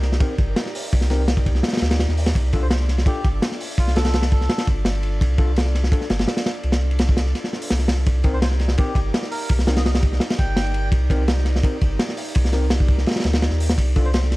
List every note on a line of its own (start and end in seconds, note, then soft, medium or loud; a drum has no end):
0.00 0.20 C2 loud
0.00 0.37 D#4 medium
0.00 0.37 G4 medium
0.00 0.37 A#4 medium
0.00 0.37 D5 medium
0.00 snare soft
0.00 ride medium
0.12 snare medium
0.20 0.33 C4 medium
0.20 0.33 D#4 medium
0.20 0.33 A#4 medium
0.20 kick loud
0.20 ride medium
0.38 0.55 G1 loud
0.38 0.90 D#4 medium
0.38 0.90 G4 medium
0.38 0.90 A#4 medium
0.38 0.90 D5 medium
0.38 kick loud
0.38 ride medium
0.56 snare loud
0.56 ride medium
0.66 snare soft
0.75 open hi-hat medium
0.92 1.63 C2 loud
0.92 1.80 D#4 medium
0.92 1.79 G4 medium
0.92 1.80 A#4 medium
0.92 1.80 D5 medium
0.92 kick loud
0.92 ride medium
1.01 snare medium
1.10 1.23 C4 medium
1.10 1.23 D#4 medium
1.10 1.23 A#4 medium
1.10 snare soft
1.10 ride medium
1.28 snare loud
1.28 ride medium
1.37 kick loud
1.46 kick loud
1.46 ride medium
1.55 snare soft
1.63 snare medium
1.63 ride medium
1.68 snare medium
1.68 ride medium
1.73 snare medium
1.73 ride medium
1.77 snare medium
1.77 ride medium
1.81 2.07 D2 medium
1.81 2.06 D#4 medium
1.81 2.06 G4 medium
1.81 2.06 A#4 medium
1.81 2.06 D5 loud
1.81 snare loud
1.81 ride medium
1.91 snare loud
1.91 ride medium
2.00 snare loud
2.00 ride medium
2.08 2.34 D#2 medium
2.08 2.33 D#4 medium
2.08 2.33 G4 medium
2.08 2.33 A#4 medium
2.08 2.33 D5 loud
2.08 snare soft
2.17 open hi-hat medium
2.26 snare loud
2.26 ride medium
2.35 3.05 C2 loud
2.35 3.22 D4 medium
2.35 3.22 F4 medium
2.35 3.22 A4 medium
2.35 3.22 D5 medium
2.35 kick loud
2.35 ride medium
2.53 2.65 D4 medium
2.53 2.65 F4 medium
2.53 2.65 A4 loud
2.53 kick loud
2.53 ride medium
2.62 2.68 C5 medium
2.71 2.77 C5 medium
2.71 snare loud
2.71 ride loud
2.80 snare soft
2.89 snare soft
2.89 ride medium
2.98 snare soft
3.06 3.19 D4 medium
3.06 3.19 F4 medium
3.06 3.28 G4 medium
3.06 3.19 A4 medium
3.06 kick loud
3.06 ride medium
3.24 3.41 G1 medium
3.24 3.76 D4 medium
3.24 3.76 F4 medium
3.24 3.76 A4 medium
3.24 3.76 D5 loud
3.24 kick loud
3.24 ride medium
3.42 snare loud
3.42 ride medium
3.52 snare soft
3.60 open hi-hat medium
3.78 4.48 C2 loud
3.78 4.65 D4 medium
3.78 4.65 F4 medium
3.78 3.94 F4 medium
3.78 4.65 A4 medium
3.78 4.65 D5 medium
3.78 kick loud
3.78 ride medium
3.87 snare soft
3.96 4.08 D4 medium
3.96 4.08 F4 medium
3.96 4.08 A4 medium
3.96 4.23 A4 loud
3.96 snare loud
3.96 ride medium
4.05 snare loud
4.05 ride medium
4.14 snare loud
4.14 ride medium
4.22 snare loud
4.22 ride medium
4.32 4.67 A4 medium
4.32 kick medium
4.32 ride medium
4.41 snare soft
4.49 snare loud
4.49 ride medium
4.58 snare loud
4.58 ride medium
4.67 5.20 G1 loud
4.67 5.19 D4 medium
4.67 5.19 F4 medium
4.67 5.19 A4 medium
4.67 5.19 D5 loud
4.67 kick medium
4.67 ride medium
4.85 snare loud
4.85 ride medium
4.95 ride soft
5.03 ride medium
5.21 5.91 C2 loud
5.21 6.08 D4 medium
5.21 6.08 F4 medium
5.21 6.08 A4 medium
5.21 6.08 D5 medium
5.21 kick loud
5.21 ride loud
5.38 5.51 D4 medium
5.38 5.51 F4 medium
5.38 5.51 A4 loud
5.38 kick loud
5.38 ride medium
5.56 snare loud
5.56 ride medium
5.66 snare soft
5.75 snare soft
5.75 ride medium
5.84 snare medium
5.92 6.05 D4 medium
5.92 6.05 F4 medium
5.92 6.05 A4 medium
5.92 kick loud
5.92 ride loud
6.01 snare soft
6.10 6.26 G1 medium
6.10 6.62 D4 medium
6.10 6.62 F4 medium
6.10 6.62 A4 medium
6.10 6.62 D5 medium
6.10 snare loud
6.10 ride medium
6.19 snare loud
6.19 ride medium
6.28 snare loud
6.28 ride medium
6.37 snare loud
6.37 ride medium
6.46 snare loud
6.46 ride medium
6.55 ride soft
6.63 7.34 C2 loud
6.63 7.51 D4 medium
6.63 7.51 F4 medium
6.63 7.51 A4 medium
6.63 7.51 D5 medium
6.63 ride medium
6.72 snare loud
6.72 ride medium
6.81 ride soft
6.91 ride medium
6.99 snare loud
6.99 ride medium
7.09 kick medium
7.17 snare loud
7.17 ride medium
7.26 snare soft
7.35 snare soft
7.35 ride medium
7.44 snare soft
7.53 7.78 D4 loud
7.53 7.78 F4 medium
7.53 7.78 A4 medium
7.53 7.78 D5 loud
7.53 snare soft
7.62 open hi-hat medium
7.70 8.05 C2 medium
7.70 snare medium
7.70 ride medium
7.79 8.04 D4 medium
7.79 8.05 F4 medium
7.79 8.04 A4 medium
7.79 8.04 D5 loud
7.79 snare soft
7.88 snare loud
7.88 ride medium
7.98 snare soft
8.06 8.77 C2 loud
8.06 8.94 D#4 medium
8.06 8.94 G4 medium
8.06 8.94 A#4 medium
8.06 8.94 D5 medium
8.06 kick loud
8.06 ride medium
8.24 8.37 C4 loud
8.24 8.37 D#4 medium
8.24 8.37 A#4 loud
8.24 kick medium
8.24 ride medium
8.34 8.39 C5 medium
8.42 8.48 C5 medium
8.42 snare loud
8.42 ride medium
8.51 snare soft
8.59 snare soft
8.59 ride medium
8.68 snare medium
8.78 8.90 C4 medium
8.78 8.90 D#4 medium
8.78 9.00 G4 medium
8.78 8.90 A#4 medium
8.78 kick loud
8.78 ride medium
8.95 9.12 G1 medium
8.95 9.47 D#4 medium
8.95 9.47 G4 medium
8.95 9.47 A#4 medium
8.95 9.47 D5 medium
8.95 kick medium
8.95 ride medium
9.14 snare loud
9.14 ride medium
9.22 snare soft
9.31 9.53 A#4 medium
9.31 open hi-hat medium
9.49 10.20 C2 loud
9.49 10.37 D#4 medium
9.49 10.37 G4 medium
9.49 10.37 A#4 medium
9.49 10.37 D5 medium
9.49 kick loud
9.49 ride medium
9.59 snare medium
9.67 9.80 C4 medium
9.67 9.80 D#4 medium
9.67 9.80 A#4 loud
9.67 snare loud
9.67 ride medium
9.76 9.82 D#5 medium
9.76 snare loud
9.76 ride medium
9.85 9.91 D#5 medium
9.85 snare loud
9.85 ride medium
9.95 snare loud
9.95 ride medium
10.03 kick medium
10.03 ride medium
10.13 snare soft
10.20 snare loud
10.20 ride medium
10.30 snare loud
10.30 ride medium
10.39 10.91 G1 loud
10.39 10.90 D#4 medium
10.39 10.90 G4 medium
10.39 10.90 A#4 medium
10.39 10.90 D5 medium
10.39 10.89 G5 medium
10.39 kick medium
10.39 ride medium
10.56 snare loud
10.56 ride medium
10.67 ride soft
10.74 ride medium
10.92 11.62 C2 loud
10.92 11.80 D#4 medium
10.92 11.80 G4 medium
10.92 11.80 A#4 medium
10.92 11.80 D5 medium
10.92 kick loud
10.92 ride medium
11.10 11.22 C4 medium
11.10 11.22 D#4 medium
11.10 11.22 A#4 loud
11.10 kick medium
11.10 ride medium
11.28 snare loud
11.28 ride medium
11.38 snare soft
11.45 snare soft
11.45 ride medium
11.56 snare medium
11.63 11.76 C4 medium
11.63 11.76 D#4 medium
11.63 11.76 A#4 medium
11.63 kick loud
11.63 ride medium
11.81 11.98 G1 medium
11.81 12.33 D#4 medium
11.81 12.33 G4 medium
11.81 12.33 A#4 medium
11.81 12.33 D5 loud
11.81 kick medium
11.81 ride medium
11.99 snare loud
11.99 ride medium
12.09 snare medium
12.17 open hi-hat medium
12.35 13.06 C2 loud
12.35 13.22 D#4 medium
12.35 13.22 G4 medium
12.35 13.22 A#4 medium
12.35 13.22 D5 medium
12.35 kick loud
12.35 ride medium
12.45 snare medium
12.52 12.65 C4 medium
12.52 12.65 D#4 medium
12.52 12.65 A#4 loud
12.52 snare soft
12.52 ride medium
12.70 snare loud
12.70 ride loud
12.80 kick medium
12.88 kick loud
12.88 ride medium
12.98 snare soft
13.06 snare medium
13.06 ride medium
13.11 snare loud
13.11 ride medium
13.16 snare medium
13.16 ride medium
13.20 snare loud
13.20 ride medium
13.24 13.50 D2 medium
13.24 13.49 D#4 medium
13.24 13.49 G4 medium
13.24 13.49 A#4 medium
13.24 13.49 D5 loud
13.24 snare loud
13.24 ride medium
13.33 snare loud
13.33 ride medium
13.42 snare loud
13.42 ride medium
13.50 13.77 D#2 medium
13.50 13.76 D#4 medium
13.50 13.76 G4 medium
13.50 13.76 A#4 medium
13.50 13.76 D5 loud
13.50 snare soft
13.60 open hi-hat medium
13.70 snare loud
13.70 ride medium
13.78 14.37 C2 loud
13.78 14.37 D4 medium
13.78 14.37 F4 medium
13.78 14.37 A4 medium
13.78 14.37 D5 medium
13.78 kick loud
13.78 ride medium
13.96 14.08 D4 medium
13.96 14.08 F4 medium
13.96 14.08 A4 loud
13.96 kick medium
13.96 ride medium
14.05 14.11 C5 medium
14.14 14.20 C5 medium
14.14 snare loud
14.14 ride medium
14.23 snare soft
14.31 snare soft
14.31 ride medium